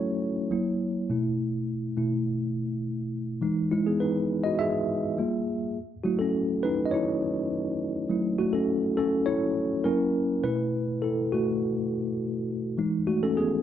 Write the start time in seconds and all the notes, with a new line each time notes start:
Already playing: F#3 A3 C#4 E4 F#4 A4 C#5
0.51 F#3 A#3 E4
1.10 B2 A3 E4
1.97 B2 A3 E4
3.41 E3 G#3 D#4
3.72 G#3 E4
3.87 B3 G#4
4.00 D#4 B4
4.44 F#4 D#5
4.59 G#4 E5
5.18 G3 A#3 F4
6.04 F#3 A3 E4 F#4
6.19 C#4 A4
6.63 D#4 B4
6.85 D#5
6.91 E4 C#5
8.10 F#3 A3 E4
8.39 A3 F#4
8.53 C#4 A4
8.97 C#4 A4
9.26 E4 C#5
9.84 F#3 A#3 C#4 E4 A#4
10.44 B2 A3 E4 B4
11.02 E4 A4
11.32 A3 F#4
12.78 E3 G#3 D#4
13.07 A3 F#4
13.23 C#4 A4
13.37 B3 G#4